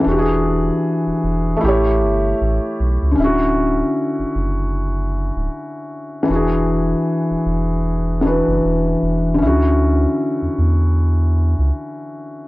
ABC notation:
X:1
M:4/4
L:1/16
Q:"Swing 16ths" 1/4=77
K:Dlyd
V:1 name="Felt piano"
[E,DF=G^G]8 [A,E=Gc]8 | [D,CEF]16 | [E,DFG]8- [E,DFG]2 [E,DFB]6 | [D,CEF]16 |]
V:2 name="Sub bass" clef=bass
E,,,4 z E,,, E,,,2 A,,,2 =G,,,2 A,,, z B,,, C,, | D,,,4 z F,,, F,,,4- F,,, D,,, z4 | E,,,4 z E,,, E,,,4- E,,, F,,, E,,,2 E,,,2 | D,,4 z E,, E,,4- E,, C,, z4 |]